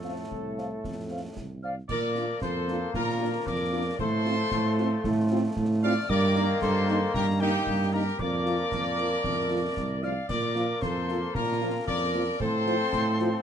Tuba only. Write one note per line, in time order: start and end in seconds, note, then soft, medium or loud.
0.00 0.23 F2 medium
0.32 0.75 C2 medium
0.84 1.28 F2 medium
1.37 1.80 C2 medium
1.90 2.33 A#2 medium
2.42 2.86 F2 medium
2.94 3.38 A#2 loud
3.47 3.91 F2 medium
3.99 4.43 A2 loud
4.52 4.96 A2 loud
5.04 5.48 A2 loud
5.57 5.97 A2 loud
6.10 6.53 G2 loud
6.62 7.06 G2 loud
7.14 7.58 G2 loud
7.67 8.11 G2 loud
8.19 8.63 F2 loud
8.72 9.16 F2 medium
9.24 9.68 F2 medium
9.77 10.21 C2 medium
10.30 10.74 A#2 loud
10.82 11.26 F2 medium
11.35 11.79 A#2 loud
11.87 12.31 F2 loud
12.40 12.84 A2 loud
12.93 13.37 A2 loud